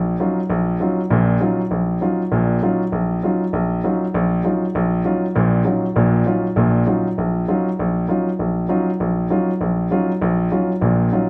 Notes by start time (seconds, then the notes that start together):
Already playing: A#1
0.20 F#3 C#4 D#4 F4
0.50 A#1
0.80 F#3 C#4 D#4 F4
1.10 A#1 A#2
1.40 F#3 C#4 D#4 F4
1.71 A#1
2.01 F#3 C#4 D#4 F4
2.32 A#1 A#2
2.62 F#3 C#4 D#4 F4
2.92 A#1
3.23 F#3 C#4 D#4 F4
3.53 A#1
3.84 F#3 C#4 D#4 F4
4.14 A#1
4.44 F#3 C#4 D#4 F4
4.75 A#1
5.05 F#3 C#4 D#4 F4
5.35 A#1 A#2
5.65 F#3 C#4 D#4 F4
5.96 A#1 A#2
6.26 F#3 C#4 D#4 F4
6.56 A#1 A#2
6.87 F#3 C#4 D#4 F4
7.18 A#1
7.48 F#3 C#4 D#4 F4
7.79 A#1
8.08 F#3 C#4 D#4 F4
8.39 A#1
8.69 F#3 C#4 D#4 F4
9.00 A#1
9.30 F#3 C#4 D#4 F4
9.61 A#1
9.91 F#3 C#4 D#4 F4
10.22 A#1
10.51 F#3 C#4 D#4 F4
10.81 A#1 A#2
11.12 F#3 C#4 D#4 F4